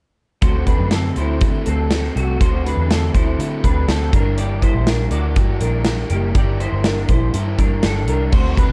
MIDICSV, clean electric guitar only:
0, 0, Header, 1, 2, 480
1, 0, Start_track
1, 0, Tempo, 494234
1, 408, Time_signature, 4, 2, 24, 8
1, 8470, End_track
2, 0, Start_track
2, 0, Title_t, "Clean electric guitar"
2, 0, Program_c, 0, 27
2, 413, Note_on_c, 0, 66, 62
2, 415, Note_on_c, 0, 72, 66
2, 648, Note_off_c, 0, 72, 0
2, 652, Note_off_c, 0, 66, 0
2, 652, Note_on_c, 0, 71, 64
2, 661, Note_on_c, 0, 62, 46
2, 890, Note_off_c, 0, 71, 0
2, 895, Note_off_c, 0, 62, 0
2, 895, Note_on_c, 0, 69, 58
2, 903, Note_on_c, 0, 60, 43
2, 1132, Note_off_c, 0, 69, 0
2, 1136, Note_off_c, 0, 60, 0
2, 1139, Note_on_c, 0, 72, 56
2, 1145, Note_on_c, 0, 64, 44
2, 1586, Note_off_c, 0, 72, 0
2, 1589, Note_off_c, 0, 64, 0
2, 1613, Note_on_c, 0, 69, 58
2, 1620, Note_on_c, 0, 60, 48
2, 2063, Note_off_c, 0, 69, 0
2, 2066, Note_off_c, 0, 60, 0
2, 2098, Note_on_c, 0, 66, 63
2, 2105, Note_on_c, 0, 57, 49
2, 2334, Note_off_c, 0, 66, 0
2, 2338, Note_off_c, 0, 57, 0
2, 2345, Note_on_c, 0, 72, 89
2, 2351, Note_on_c, 0, 66, 70
2, 2574, Note_off_c, 0, 72, 0
2, 2578, Note_on_c, 0, 71, 69
2, 2580, Note_off_c, 0, 66, 0
2, 2583, Note_on_c, 0, 62, 50
2, 2814, Note_off_c, 0, 71, 0
2, 2816, Note_off_c, 0, 62, 0
2, 2819, Note_on_c, 0, 69, 65
2, 2825, Note_on_c, 0, 60, 52
2, 3047, Note_off_c, 0, 69, 0
2, 3051, Note_on_c, 0, 72, 66
2, 3057, Note_off_c, 0, 60, 0
2, 3061, Note_on_c, 0, 64, 48
2, 3502, Note_off_c, 0, 72, 0
2, 3507, Note_off_c, 0, 64, 0
2, 3532, Note_on_c, 0, 71, 63
2, 3541, Note_on_c, 0, 62, 53
2, 3766, Note_off_c, 0, 71, 0
2, 3770, Note_on_c, 0, 69, 64
2, 3775, Note_off_c, 0, 62, 0
2, 3779, Note_on_c, 0, 60, 48
2, 4010, Note_off_c, 0, 69, 0
2, 4015, Note_off_c, 0, 60, 0
2, 4023, Note_on_c, 0, 70, 59
2, 4027, Note_on_c, 0, 62, 46
2, 4245, Note_off_c, 0, 70, 0
2, 4249, Note_on_c, 0, 74, 79
2, 4256, Note_on_c, 0, 67, 64
2, 4259, Note_off_c, 0, 62, 0
2, 4486, Note_off_c, 0, 74, 0
2, 4489, Note_on_c, 0, 72, 62
2, 4493, Note_off_c, 0, 67, 0
2, 4494, Note_on_c, 0, 64, 51
2, 4730, Note_off_c, 0, 72, 0
2, 4731, Note_on_c, 0, 70, 52
2, 4732, Note_off_c, 0, 64, 0
2, 4737, Note_on_c, 0, 62, 44
2, 4968, Note_on_c, 0, 74, 69
2, 4970, Note_off_c, 0, 70, 0
2, 4971, Note_off_c, 0, 62, 0
2, 4975, Note_on_c, 0, 66, 53
2, 5420, Note_off_c, 0, 74, 0
2, 5423, Note_off_c, 0, 66, 0
2, 5451, Note_on_c, 0, 70, 65
2, 5458, Note_on_c, 0, 62, 48
2, 5901, Note_off_c, 0, 70, 0
2, 5905, Note_off_c, 0, 62, 0
2, 5929, Note_on_c, 0, 67, 65
2, 5939, Note_on_c, 0, 58, 51
2, 6169, Note_off_c, 0, 67, 0
2, 6174, Note_off_c, 0, 58, 0
2, 6174, Note_on_c, 0, 74, 87
2, 6182, Note_on_c, 0, 67, 73
2, 6408, Note_off_c, 0, 74, 0
2, 6412, Note_on_c, 0, 72, 78
2, 6415, Note_off_c, 0, 67, 0
2, 6421, Note_on_c, 0, 64, 51
2, 6650, Note_off_c, 0, 72, 0
2, 6655, Note_off_c, 0, 64, 0
2, 6657, Note_on_c, 0, 70, 69
2, 6666, Note_on_c, 0, 62, 54
2, 6893, Note_off_c, 0, 70, 0
2, 6896, Note_on_c, 0, 72, 66
2, 6897, Note_off_c, 0, 62, 0
2, 6904, Note_on_c, 0, 64, 47
2, 7343, Note_off_c, 0, 72, 0
2, 7347, Note_off_c, 0, 64, 0
2, 7376, Note_on_c, 0, 62, 51
2, 7377, Note_on_c, 0, 70, 56
2, 7610, Note_off_c, 0, 70, 0
2, 7612, Note_off_c, 0, 62, 0
2, 7617, Note_on_c, 0, 69, 67
2, 7628, Note_on_c, 0, 62, 51
2, 7851, Note_off_c, 0, 69, 0
2, 7857, Note_off_c, 0, 62, 0
2, 7859, Note_on_c, 0, 70, 68
2, 7870, Note_on_c, 0, 62, 51
2, 8090, Note_off_c, 0, 70, 0
2, 8093, Note_on_c, 0, 72, 90
2, 8097, Note_off_c, 0, 62, 0
2, 8104, Note_on_c, 0, 66, 67
2, 8327, Note_off_c, 0, 72, 0
2, 8331, Note_on_c, 0, 71, 70
2, 8334, Note_off_c, 0, 66, 0
2, 8338, Note_on_c, 0, 62, 51
2, 8470, Note_off_c, 0, 62, 0
2, 8470, Note_off_c, 0, 71, 0
2, 8470, End_track
0, 0, End_of_file